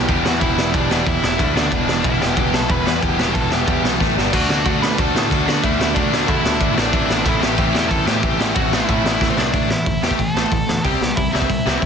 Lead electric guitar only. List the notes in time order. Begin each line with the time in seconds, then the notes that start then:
Already playing: G4 G5
0.24 F#4 F#5
0.40 E4 E5
0.74 D4 D5
1.07 E4 E5
1.56 D4 D5
2.06 E4 E5
2.22 G4 G5
2.39 G4 G5
2.54 A4 A5
2.71 B4 B5
3.03 G4 G5
3.34 A4 A5
3.52 G4 G5
4.33 F#4 F#5
4.83 B4 B5
5.00 A4 A5
5.47 F#4 F#5
5.63 E4 E5
5.95 D4 D5
6.27 E4 E5
6.77 D4 D5
7.26 E4 E5
7.42 G4 G5
7.75 G4 G5
7.89 A4 A5
8.06 G4 G5
8.55 F#4 F#5
8.73 E4 E5
9.30 C5
9.38 D4 D5
9.70 E4 E5
10.04 G4 G5
10.19 A4 A5
10.83 G4 G5
11.16 E4 E5
11.32 E4 E5